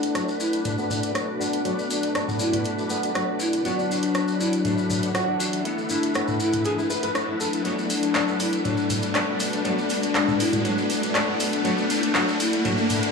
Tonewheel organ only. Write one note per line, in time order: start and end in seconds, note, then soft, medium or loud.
0.00 1.12 A3 medium
0.00 1.12 D4 medium
0.00 1.12 B4 medium
1.14 1.62 A3 medium
1.14 1.62 D4 medium
1.14 1.62 B4 medium
1.65 3.12 A3 medium
1.65 3.12 D4 medium
1.65 3.12 B4 medium
3.14 3.62 A3 medium
3.14 3.62 D4 medium
3.14 3.62 B4 medium
3.65 5.12 F#3 medium
3.65 5.12 D4 medium
3.65 5.12 B4 medium
5.14 5.62 F#3 medium
5.14 5.62 D4 medium
5.14 5.62 B4 medium
5.65 7.12 A3 medium
5.65 7.12 E4 medium
5.65 7.12 B4 medium
7.15 7.62 A3 medium
7.15 7.62 E4 medium
7.15 7.62 B4 medium
7.64 8.63 A3 medium
7.64 8.63 D4 medium
7.64 8.63 B4 medium
8.64 9.63 A3 medium
8.64 9.63 D4 medium
8.64 9.63 B4 medium
9.64 10.63 A3 medium
9.64 10.63 D4 medium
9.64 10.63 B4 medium
10.64 11.63 A3 medium
10.64 11.63 D4 medium
10.64 11.63 B4 medium
11.64 12.13 A3 medium
11.64 12.13 D4 medium
11.64 12.13 B4 loud
12.15 12.63 A3 medium
12.15 12.63 D4 medium
12.15 12.63 B4 loud
12.65 13.12 A3 medium
12.65 13.12 D4 medium
12.65 13.12 B4 loud